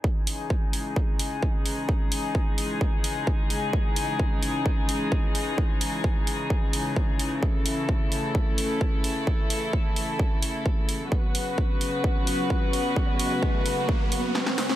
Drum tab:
HH |--o---o---o---o-|--o---o---o---o-|--o---o---o---o-|--o---o---o---o-|
SD |----------------|----------------|----------------|----------------|
BD |o---o---o---o---|o---o---o---o---|o---o---o---o---|o---o---o---o---|

HH |--o---o---o---o-|--o---o---o---o-|--o---o---o---o-|--o---o---o---o-|
SD |----------------|----------------|----------------|------------oooo|
BD |o---o---o---o---|o---o---o---o---|o---o---o---o---|o---o---o-------|